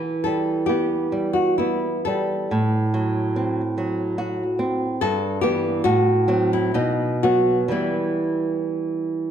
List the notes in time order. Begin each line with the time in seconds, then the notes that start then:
Already playing: E3 B4
0.24 G3 A4
0.66 B3 G4
1.12 G3
1.33 F#4
1.58 B3 E4
2.05 G3 A4
2.51 A2
2.94 F#3
3.36 C4
3.78 F#3
4.18 F#4
4.59 C4
5.01 G2 A4
5.41 E3 B3 G4
5.84 A2 F#4
6.28 F#3 C4
6.53 E4
6.74 B2 D#4
7.23 F#3 B3 F#4
7.68 E3 G3 B3 E4